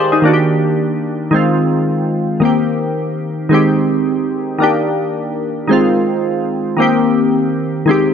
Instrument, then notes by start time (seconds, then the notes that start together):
synth keys
Already playing: D#3 G#3 C4 G4 G#4 A#4 C5 D5 D#5 F5
0.12 D#4 G#4
0.22 D#3 A#3 D4
0.27 F#4
0.33 G4
1.31 D#3 G#3 C4
1.36 F4
2.40 D#3 A#3 C4
2.45 G4
3.49 D#3 G#3 C4
3.54 G4
4.58 D#3 A#3 D4
4.63 G4
5.67 D#3 G#3 C4
5.73 F4
6.77 D#3 A#3 C4
6.82 G4
7.86 D#3 G#3 C4
7.91 G4